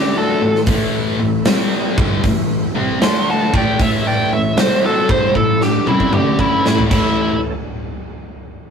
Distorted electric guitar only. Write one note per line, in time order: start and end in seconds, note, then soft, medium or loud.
0.00 0.40 D3 medium
0.00 0.41 A3 medium
0.00 0.41 D4 medium
0.42 0.62 A2 medium
0.42 0.63 E3 medium
0.68 1.18 A2 medium
0.68 1.18 E3 loud
0.68 1.18 A3 loud
1.19 1.40 A2 medium
1.19 1.40 E3 medium
1.45 1.96 C3 medium
1.45 1.96 G3 loud
1.45 1.96 C4 medium
1.98 2.23 G2 loud
1.98 2.23 D3 medium
1.98 2.23 G3 loud
2.24 2.65 A2 medium
2.24 2.65 E3 medium
2.75 3.00 C3 medium
2.75 3.00 G3 medium
2.75 3.01 C4 medium
3.00 3.51 D3 medium
3.00 3.51 A3 medium
3.00 3.52 D4 loud
3.53 3.77 A2 medium
3.53 3.78 E3 loud
3.53 3.78 A3 loud
3.78 4.29 A2 medium
3.78 4.30 E3 loud
3.78 4.30 A3 loud
4.32 4.53 A2 medium
4.32 4.53 E3 medium
4.57 5.08 C3 medium
4.57 5.08 G3 medium
4.57 5.08 C4 loud
5.09 5.34 G2 medium
5.09 5.34 D3 medium
5.09 5.35 G3 medium
5.35 5.77 A2 medium
5.35 5.77 E3 medium
5.86 6.11 C3 medium
5.86 6.12 G3 medium
5.86 6.13 C4 medium
6.12 6.63 D3 medium
6.12 6.63 A3 medium
6.12 6.64 D4 medium
6.63 6.88 A2 medium
6.63 6.89 E3 loud
6.63 6.90 A3 loud
6.89 7.32 A2 loud
6.89 7.33 E3 medium
6.89 7.33 A3 loud